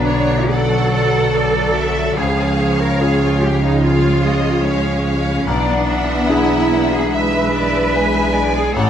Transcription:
Already playing: B1 D3 F#3 B3 D4 F#4 B4 D5
0.07 C#5
0.50 F#3 A4 D5 F#5
0.93 F#5
1.33 F#3 D5
1.76 E5
2.17 C#2 F3 C#4 G#4 C#5 F5
2.81 A#4
3.00 G#3 C#4 F4 G#4
3.22 F4
3.43 G4
3.63 D#4
3.83 F4 C#5 F5
4.25 D#5
4.66 C#4 F5
5.08 F5
5.47 B1 E3 B3 D4 D5 F#5
5.88 E5
6.30 D4 E4 G#4
6.93 G#4
7.12 G#3 B4 E5
7.54 D5
7.94 G#3 E5 G#5
8.35 D5
8.57 G#4
8.76 A1 E3 A3 C#4 A4 C#5 F#5

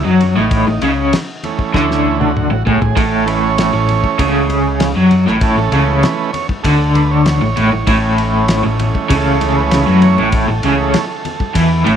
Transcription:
0.04 F#2 F#3 D#4, high conga
0.20 C#4, ride, low conga
0.35 A1 A2 D#4, high conga
0.51 kick, ride
0.67 A1 A2
0.81 C#2 C#3, ride, high conga
1.13 snare, ride
1.43 E3 A3 C#4, ride, low conga
1.58 kick, high conga
1.74 D2 D3 E4, kick, snare, low conga
1.91 snare
2.05 high conga, low conga
2.20 F#4, high tom
2.37 mid tom
2.51 A1 A2, high conga
2.66 A1 A2 G#4, floor tom, low conga
2.81 A1 A2, floor tom, high conga
2.96 A1 A2 A4, kick, ride
3.26 E3 A3 C#4 B4, ride
3.43 C#5
3.58 snare, ride
3.73 A1 A2
3.89 ride, low conga
4.04 kick, high conga
4.19 C#2 C#3 E3 A3 C#4, kick, ride, low conga
4.50 ride, high conga, low conga
4.80 snare, ride
4.96 F#2 F#3, high conga
5.11 ride, low conga
5.26 A1 A2, snare
5.41 E3 A3 C#4 A4, kick, ride
5.58 A1 A2
5.72 C#2 C#3, ride
5.88 B4
6.03 snare, ride
6.33 C#5, ride, low conga
6.49 kick, high conga
6.63 D2 D3 A4, kick, ride, low conga
6.95 B4, ride, high conga, low conga
7.11 C#5
7.26 snare, ride
7.41 A1 A2, high conga
7.57 A1 A2, ride, low conga
7.72 A1 A2, high conga
7.87 A1 A2 E3 A3 C#4, kick, ride
8.18 ride
8.48 snare, ride
8.64 A1 A2
8.79 ride, low conga
8.95 kick, high conga
9.09 C#2 C#3, kick, ride, low conga
9.14 A4
9.41 ride, high conga, low conga
9.58 B4
9.71 snare, ride
9.87 F#2 F#3, high conga
10.02 C#5, ride, low conga
10.18 A1 A2, high conga
10.32 A4, kick, ride
10.48 A1 A2
10.63 C#2 C#3 E3 A3 C#4 G#4, ride, high conga
10.82 A4
10.94 snare, ride
11.25 ride, low conga
11.40 kick, high conga
11.55 E2 E3, kick, ride
11.85 A1 A2 E3 A3 C#4, ride, low conga

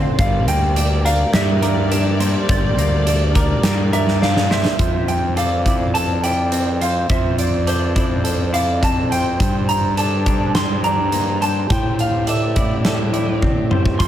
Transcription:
Already playing: D3 A3 C4 D4 F4 A4 C5 F5
0.18 G1 G2 G3 G4 A#4 C5 D5 F5, kick, closed hi-hat
0.47 D2 A#3 G5, closed hi-hat
0.76 D4 D5, closed hi-hat
1.05 A#4 D5 F5, closed hi-hat
1.33 G2 A#3 E5, snare, closed hi-hat
1.62 A#4 D5, closed hi-hat
1.91 D4, closed hi-hat
2.20 A#3 C5, closed hi-hat
2.49 G1 G2 C5 D5, kick, closed hi-hat
2.78 D2 A#3, closed hi-hat
3.06 D4 D5, closed hi-hat
3.35 A#4 D5, kick, closed hi-hat
3.63 G2 A#3, snare, closed hi-hat
3.93 A#4 D5 E5, closed hi-hat
4.08 snare
4.22 D4 F5, snare
4.37 snare
4.50 A#3 C5 E5, snare
4.65 snare
4.79 F2 F3 C4 C5, kick, closed hi-hat
5.08 G5, closed hi-hat
5.37 A4 D5 F5, closed hi-hat
5.65 E4 D5, kick, closed hi-hat
5.94 A4 A5, closed hi-hat
6.23 E4 D5 G5, closed hi-hat
6.52 C4, closed hi-hat
6.81 F3 C5 F5, closed hi-hat
7.09 F2 F3 C5 E5, kick, closed hi-hat
7.38 D5, closed hi-hat
7.67 A4 C5 D5, closed hi-hat
7.96 E4 D5, kick, closed hi-hat
8.24 A4, closed hi-hat
8.53 E4 D5 F5, closed hi-hat
8.81 C4 A5, kick, closed hi-hat
9.10 F3 C5 G5, closed hi-hat
9.39 G2 G3 D4 C5, kick, closed hi-hat
9.69 A#5, closed hi-hat
9.97 A4 D5 A5, closed hi-hat
10.26 D4 D5, kick, closed hi-hat
10.55 C6, snare, closed hi-hat
10.84 D4 D5 A#5, closed hi-hat
11.12 A#3, closed hi-hat
11.41 G3 C5 A5, closed hi-hat
11.70 A2 A3 C4 G4 C5 G5, kick, closed hi-hat
11.99 F5, closed hi-hat
12.27 A4 D5 E5, closed hi-hat
12.56 E4 D5, kick, closed hi-hat
12.85 A4, snare, closed hi-hat
13.13 E4 D5, closed hi-hat
13.42 C4, kick, high tom
13.70 G3 C5, mid tom
13.86 kick
13.99 F2 F3 E4 A4 C5 C6, kick, closed hi-hat

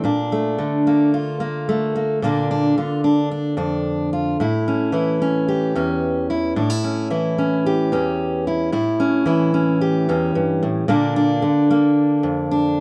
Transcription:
0.04 A#2 D4
0.32 A3
0.58 D3
0.87 A#3
1.14 F4
1.40 A#3
1.69 A3
1.96 A#3
2.22 A#2 D3 A#3 D4
2.51 D4
2.78 D3 F4
3.04 D4
3.31 D4
3.57 F2 D4
4.13 F4
4.40 A2 E4
4.68 C#4
4.92 E3 E4
5.22 C#4
5.48 G4
5.75 E2 C#4
6.30 E4
6.56 A2 D4
6.70 E4
6.84 C#4
7.10 E3 E4
7.38 C#4
7.66 G4
7.92 E2 C#4
8.47 E4
8.72 A2 E4
9.00 C#4
9.26 E3 E4
9.54 C#4
9.81 G4
10.09 E2 C#4
10.35 G2
10.63 A2
10.88 A#2 D3 A#3 D4
11.16 D4
11.42 D3
11.71 A#3
12.23 F2
12.51 D4

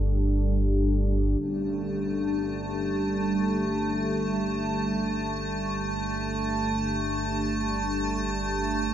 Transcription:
Already playing: G1 G2 G3 D4 G4 A4
1.39 G1 G2 A3 A5
1.43 tam-tam

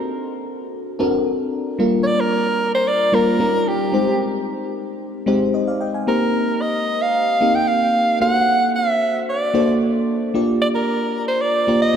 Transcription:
Already playing: C4 D4 F#4 A4 A#4
0.99 C4 D4 F#4 A4 A#4
1.79 G3 A#3 D4 F4 A#4
2.03 C#5 D5
2.20 A#4
2.75 C5
2.88 D5
3.12 G3 A#3 D4 F4 A#4
3.39 G3 C#4 D#4 F4 A#4
3.68 G4
3.92 G#3 C4 D#4 G4 C5
5.26 G#3 C4 D#4 G4 C5
5.54 C5 D#5
5.67 D5 F5
5.80 D#5 G5
5.94 F5 G#5
6.07 A#3 C4 D#4 G4 A#4 C5
6.61 D#5
7.02 F5
7.41 A#3 C4 D#4 G4 A#4
7.55 G5
7.68 F5
8.20 A#3 D4 F#4 A4 C5 F#5
8.76 E5
9.29 D5
9.53 A#3 D4 F#4 A4 C5
10.34 A#3 D4 F4 G4 D5
10.62 D5
10.75 A#4
11.28 C5
11.42 D5
11.67 A#3 D4 F4 G4 C5
11.82 D#5

